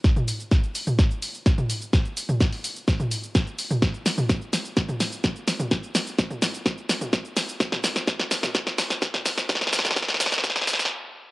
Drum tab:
HH |----o-------o-------o-------o---|----o-----o-o-------o-------o---|----o-------o-------o-------o---|----o-------o-------o-------o---|
SH |x-x-x-x-x-x-x-x-x-x-x-x-x-x-x-x-|x-x-x-x-x-x-x-x-x-x-x-x-x-x-x-x-|x-x-x-x-x-x-x-x-x-x-x-x-x-x-x-x-|x-x-x-x-x-x-x-x-x-x-x-x-x-x-x-x-|
SD |o-------o-------o-------o-------|o-------o-------o-------o-------|o---o---o---o---o---o---o---o---|o---o---o---o---o---o---o---o---|
T2 |--o-----------o-----------o-----|------o-----------o-----------o-|------o-----------o-----------o-|----------o-----------o---------|
BD |o-------o-------o-------o-------|o-------o-------o-------o-------|o-------o-------o-------o-------|o-------o-------o-------o-------|

HH |----o-------o-------o-------o---|----o-----o-o-------o-----------|
SH |x-x-x-x-x-x-x-x-x-x-x-x-x-x-x-x-|x-x-x-x-x-x-x-x-x-x-x-x---------|
SD |o-o-o-o-o-o-o-o-o-o-o-o-o-o-o-o-|oooooooooooooooooooooooo--------|
T2 |--o-----------o-----------o-----|------o-----------o-------------|
BD |o-------o-------o-------o-------|o-------o-------o---------------|